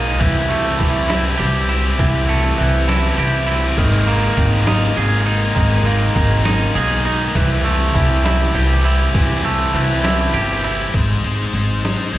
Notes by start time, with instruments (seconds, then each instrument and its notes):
Already playing: upright bass B1, clean electric guitar D#3 D#4, distorted electric guitar G#3 A#3 D#4 G#4
0.19 upright bass C2, distorted electric guitar C3 G3 C4 E4 G4, clean electric guitar E3, kick, ride
0.49 clean electric guitar A3, distorted electric guitar C4 E4 G4, ride
0.79 upright bass C2, clean electric guitar E3, distorted electric guitar G3 C4 E4 G4, kick, ride
1.09 distorted electric guitar C4 E4 G4, snare, ride
1.39 upright bass C2, distorted electric guitar G3 C4 E4 G4, ride
1.69 distorted electric guitar C4 E4 G4, ride
1.99 upright bass C2, distorted electric guitar C3 G3 C4 E4 G4, clean electric guitar E3, kick, ride
2.28 clean electric guitar A3, distorted electric guitar C4 E4 G4, ride
2.58 upright bass C2, clean electric guitar E3, distorted electric guitar G3 C4 E4 G4, ride
2.88 distorted electric guitar C4 E4 G4, snare, ride
3.17 upright bass C2, distorted electric guitar G3 C4 E4 G4, ride
3.48 distorted electric guitar C4 E4 G4, ride
3.77 upright bass G#1, clean electric guitar D#3, distorted electric guitar G#3 A#3 D#4 G#4, kick, crash
4.07 distorted electric guitar A#3 D#4 G#4, ride
4.37 upright bass G#1, clean electric guitar D#3, distorted electric guitar G#3 A#3 D#4 G#4, kick, ride
4.66 distorted electric guitar A#3 D#4 G#4, snare, ride
4.97 upright bass G#1, distorted electric guitar G#3 A#3 D#4 G#4, ride
5.26 distorted electric guitar A#3 D#4 G#4, ride
5.55 upright bass G#1, clean electric guitar D#3, distorted electric guitar G#3 A#3 D#4 G#4, kick, ride
5.86 distorted electric guitar A#3 D#4 G#4, ride
6.15 upright bass G#1, clean electric guitar D#3, distorted electric guitar G#3 A#3 D#4 G#4, kick, ride
6.45 distorted electric guitar A#3 D#4 G#4, snare, ride
6.75 upright bass B1, distorted electric guitar G#3 A#3 D#4 G#4, ride
7.05 distorted electric guitar A#3 D#4 G#4, ride
7.35 upright bass C2, distorted electric guitar C3 G3 C4 E4 G4, clean electric guitar E3, kick, ride
7.64 clean electric guitar A3, distorted electric guitar C4 E4 G4, ride
7.94 upright bass C2, clean electric guitar E3, distorted electric guitar G3 C4 E4 G4, kick, ride
8.24 distorted electric guitar C4 E4 G4, snare, ride
8.54 upright bass C2, distorted electric guitar G3 C4 E4 G4, ride
8.84 distorted electric guitar C4 E4 G4, ride
9.14 upright bass C2, distorted electric guitar C3 G3 C4 E4 G4, clean electric guitar E3, kick, ride
9.44 clean electric guitar A3, distorted electric guitar C4 E4 G4, ride
9.74 upright bass C2, clean electric guitar E3, distorted electric guitar G3 C4 E4 G4, ride
10.04 distorted electric guitar C4 E4 G4, snare, ride
10.34 upright bass G1, distorted electric guitar G3 C4 E4 G4, ride
10.64 distorted electric guitar C4 E4 G4, ride
10.94 upright bass G#1, distorted electric guitar G#3 D#4 G#4 C5, kick, closed hi-hat
11.23 upright bass G#1, distorted electric guitar G#3 D#4 G#4 C5, closed hi-hat
11.53 upright bass G#1, distorted electric guitar G#3 D#4 G#4 C5, closed hi-hat
11.83 distorted electric guitar G#3 D#4 G#4 C5, snare, closed hi-hat
12.12 upright bass G#1, distorted electric guitar G#3 D#4 G#4 C5, closed hi-hat